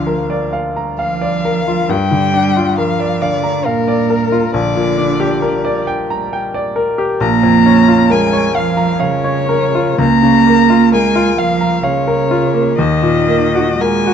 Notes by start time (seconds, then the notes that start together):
Already playing: D2 D3 F3 D4 F4 F5
0.07 A#4
0.30 D5
0.53 F5
0.77 A#5
0.99 F3 F5
1.21 D5
1.45 A#4
1.68 F4
1.89 G2 G3 G5
2.11 D3
2.34 D4
2.57 F4
2.78 F3 A#4 F5
3.00 D5
3.21 D3 D5 F5
3.44 A#5
3.65 A#2 A#4 F5
3.88 D5
4.10 A#4
4.32 F4
4.54 A#1 D3 D5
4.76 A#2
4.98 D4
5.20 G4
5.42 A#4
5.65 D5
5.87 G5
6.10 A#5
6.33 G5
6.54 D5
6.76 A#4
6.98 G4
7.21 A#1 A#3 A#5
7.43 F2
7.66 C#4
7.88 F4
8.10 G#3 A#4 G#5
8.33 C#5
8.55 F3 F5
8.77 A#5
9.00 C#3 C#5 F5
9.24 C#5
9.49 A#4
9.75 F4
9.98 C#2 A#3 A#5
10.23 C#3
10.47 A#3
10.70 F4
10.92 G#3 A#4 G#5
11.16 F4
11.38 F3 F5
11.61 A#5
11.83 C#3 C#5 F5
12.07 A#4
12.31 F4
12.54 A#3
12.76 D#2 D#3 D#5
13.03 A#2
13.28 A#3
13.55 F#4
13.78 G#3 A#4 G#5
14.07 F#4